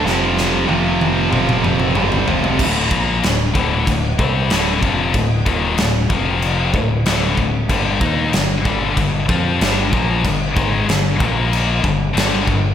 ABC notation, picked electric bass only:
X:1
M:4/4
L:1/8
Q:1/4=94
K:Dm
V:1 name="Picked electric bass" clef=bass
F,,,2 F,,,2 F,,,2 G,,, F,,, | D,,, B,,, D,,, D,,, D,,, C,, D,,, F,,, | D,,, _E,,, D,,, F,,,2 D,,, D,,, D,,, | G,,, _E,, G,,, G,,, G,,, F,, G,,, B,,, |
G,,, ^G,,, =G,,, B,,,2 G,,, G,,, G,,, |]